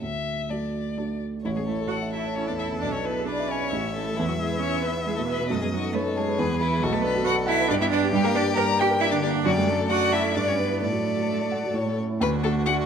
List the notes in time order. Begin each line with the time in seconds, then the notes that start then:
0.02 D2 E5
0.49 F#3 A3 D4 F#4 D5
0.96 F#3 A3 D4 F#4
1.44 A1 E3 E4 C#5
1.55 G#3 C#4 G#4
1.67 A3 E4 A4
1.80 A4
1.88 F#4 A4 C#5 F#5
2.02 E5
2.12 E4 E5 A5
2.25 C#5
2.35 C#4 E4 C#5
2.47 E2 D4 D5
2.58 C#4 E4 E5
2.72 E2
2.80 B1 D4 D5
2.92 C#4 D4 C#5
3.02 B3 E4 B4
3.18 G#4
3.25 D4 B4 D5
3.40 E5
3.48 C#4 C#5 G#5
3.62 D5
3.72 A1 E5
3.84 C#4
3.94 A3 E4 A4
4.08 A4
4.16 E2 E3 E4
4.28 F#3 B3 F#4
4.37 G#3 G#4
4.41 E4
4.52 B4
4.58 C#4 C#5
4.64 E4
4.74 E5
4.82 B3 B4 B5
4.97 B4
5.06 G#3 E4 G#4
5.16 B2 A3 A4
5.27 B3 B4
5.39 B2
5.48 F#2 A3 A4 D#5
5.61 G#3 B3 G#4
5.72 F#3 D#4 F#4
5.83 A4
5.93 A3 A4 B4 C#5
6.06 D#5
6.15 G#3 G#4 A5
6.28 B4
6.38 E2 B4
6.49 B3
6.58 E3 E4 B4
6.72 G#4
6.80 B1 F#3 F#4 A4
6.91 A3 B3 A4
7.02 B3 D4 B4
7.15 F#4
7.24 F#4 B4 F#5
7.36 D5
7.46 E4 E5 F#5
7.59 B4
7.68 G2 D4 G4 D5
7.80 B3 E4 E5
7.90 D4 D5
8.03 G4
8.12 G2 G3 G4
8.24 A#3 A#4
8.35 D4 D5
8.46 G4
8.57 A#4 A#5
8.69 D5
8.79 G4 G5
8.91 A#4
9.00 D4 E4 G4 E5
9.11 D3 D4 D5
9.22 A#3 D4 D5
9.33 D3
9.44 F#2 F#3 F#4 D5
9.56 G3 A3 G4
9.67 A3 D4 A4
9.80 A4
9.89 D4 F#4 D5 F#5
10.01 D5
10.12 E4 E5 A5
10.23 A4
10.34 G2 D4 D5
10.46 G3 C#4 C#5
10.57 B3 D4 B4
10.69 E4
10.81 A2 A3 A4 D5
10.92 F#3
11.04 D4
11.17 F#4
11.28 D4
11.40 D5
11.52 F#5
11.64 F#4
11.74 A2 C#5
11.86 A3
11.98 C#4
12.09 E4
12.20 D2 D4 F#4 B4
12.43 A3 D4 F#4 A4
12.66 A3 D4 F#4 F#5